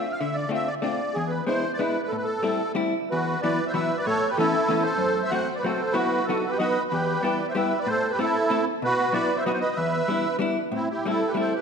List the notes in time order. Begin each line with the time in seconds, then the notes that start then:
Already playing: E5
0.12 F5
0.19 D3 E5
0.34 D5
0.49 A3 C4 D4 F4
0.54 E5
0.67 D5
0.82 A3 C4 D4 F4 D5
1.14 E2 G#4
1.28 B4
1.47 G#3 B3 D4 E4 C5
1.74 D5
1.78 G#3 B3 D4 E4 B4
2.03 B4
2.08 A2 A4
2.17 B4
2.24 A4
2.43 G3 A3 C4 E4
2.75 G3 A3 C4 E4
3.10 E2 F#4 B4
3.42 E3 F#3 B3 E4 B4 D5
3.67 C5 E5
3.74 E3 F#3 B3 E4 B4 E5
3.97 B4 D5
4.05 A2 A4 C#5
4.29 G4 B4
4.37 E3 A3 B3 C#4 E4 A4
4.68 E3 A3 B3 C#4
4.82 A4 C5
4.98 F#2
5.23 C5 E5
5.29 F#3 A3 C4 F#4 F#5
5.33 C5
5.55 B4 D5
5.63 F#3 A3 C4 F#4 A4 C5
5.91 F#3 B3 E4 F#4 B4
6.25 F#4 A4
6.29 F#3 B3 D#4 F#4
6.48 G4 B4
6.58 F#3 B3 D#4 F#4 B4 D#5
6.88 E2 G4 B4
7.20 G3 B3 E4 B4 D5
7.25 G4
7.47 C5 E5
7.54 G3 B3 E4 G4 B4 E5
7.79 B4 D5
7.87 A2 A4 C5
8.10 G4 B4
8.19 A3 C4 E4 A4
8.50 A3 C4 E4 A4
8.82 B2 F#4 B4
9.13 F#3 B3 E4 F#4 B4 D5
9.36 C5 E5
9.45 F#3 B3 D#4 F#4 B4 D#5
9.53 C5
9.60 B4 D#5
9.76 E2 B4 E5
10.08 G3 B3 D4 E4
10.39 G3 B3 D4 E4
10.72 A2 C4
10.76 E4
10.90 E4 G4
11.05 G3 A3 C4 E4 A4
11.28 G4 B4
11.34 G3 A3 C4 E4
11.40 A4 C5
11.55 G4 B4